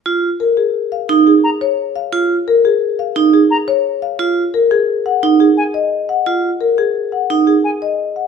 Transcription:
<<
  \new Staff \with { instrumentName = "Flute" } { \time 6/4 \key dis \minor \tempo 4 = 174 r1 ais''8 r4. | r1 ais''8 r4. | r1 gis''8 r4. | r1 gis''8 r4. | }
  \new Staff \with { instrumentName = "Marimba" } { \time 6/4 \key dis \minor r4 ais'8 gis'8 r8 eis''8 r8 gis'8 r8 cis''8 r8 eis''8 | r4 ais'8 gis'8 r8 eis''8 r8 gis'8 r8 cis''8 r8 eis''8 | r4 ais'8 gis'8 r8 fis''8 r8 gis'8 r8 dis''8 r8 fis''8 | r4 ais'8 gis'8 r8 fis''8 r8 gis'8 r8 dis''8 r8 fis''8 | }
  \new Staff \with { instrumentName = "Vibraphone" } { \time 6/4 \key dis \minor eis'8 r2 r8 dis'8 r2 r8 | eis'8 r2 r8 dis'8 r2 r8 | eis'8 r2 r8 dis'8 r2 r8 | eis'8 r2 r8 dis'8 r2 r8 | }
>>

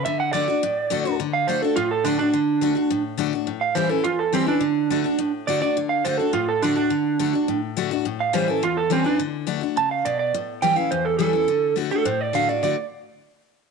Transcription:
<<
  \new Staff \with { instrumentName = "Clean electric guitar" } { \time 4/4 \key d \major \tempo 4 = 210 e''8 fis''8 d''2. | r8 f''8 c''8 a'8 f'8 a'8 d'8 d'8~ | d'2~ d'8 r4. | r8 f''8 c''8 a'8 f'8 a'8 c'8 d'8~ |
d'2~ d'8 r8 d''8 d''8 | r8 f''8 c''8 a'8 f'8 a'8 d'8 d'8~ | d'2~ d'8 r4. | r8 f''8 c''8 a'8 f'8 a'8 c'8 d'8 |
r2 a''8 f''8 d''8 d''8 | r4 g''8 f''8 c''8 a'8 a'4~ | a'4 r8 a'8 c''8 d''8 f''8 d''8 | d''8 r2. r8 | }
  \new Staff \with { instrumentName = "Steel-string acoustic guitar" } { \time 4/4 \key d \major << { r4 <d a d' fis'>8 <d' fis'>8 r4 <d a d' fis'>8 <d' fis'>8 | r4 <d a d' fis'>8 <d' fis'>8 r4 <d a d' fis'>8 <d' fis'>8 | r4 <d a d' fis'>8 <d' fis'>8 r4 <d a d' fis'>8 <d' fis'>8 | r4 <e g cis' e'>8 <cis' e'>8 r4 <e g cis' e'>8 <cis' e'>8 |
r4 <d a d' fis'>8 <d' fis'>8 r4 <d a d' fis'>8 <d' fis'>8 | r4 <d a d' fis'>8 <d' fis'>8 r4 <d a d' fis'>8 <d' fis'>8 | r4 <d a d' fis'>8 <d' fis'>8 r4 <d a d' fis'>8 <d' fis'>8 | r4 <e g cis' e'>8 <cis' e'>8 r4 <e g cis' e'>8 <cis' e'>8 |
r4 <d a d' fis'>8 <d' fis'>8 r2 | r4 <e g cis' e'>8 <cis' e'>8 r4 <e g cis' e'>8 <cis' e'>8 | r4 <d a d' fis'>8 <d' fis'>8 r4 <d a d' fis'>8 <d' fis'>8 | <d a d' fis'>8 r2. r8 | } \\ { d2 a,2 | d2 a,2 | d2 a,2 | a,2 e,2 |
d2 a,2 | d2 a,2 | d2 a,2 | a,2 e,2 |
d2 cis4 b,4 | a,2 e,2 | d2 a,2 | r1 | } >> }
>>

